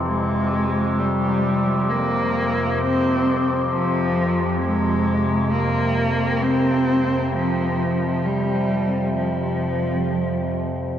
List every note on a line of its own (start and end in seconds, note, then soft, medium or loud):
0.00 10.99 F2 medium
0.00 10.99 C3 medium
0.07 1.00 G#3 loud
0.99 1.91 G3 loud
1.90 2.81 A#3 loud
2.80 3.47 C4 loud
3.71 4.56 F3 loud
4.62 5.54 G#3 loud
5.53 6.43 A#3 loud
6.42 7.35 C4 loud
7.34 8.27 F3 loud
8.25 9.16 G3 medium
9.16 10.52 F3 medium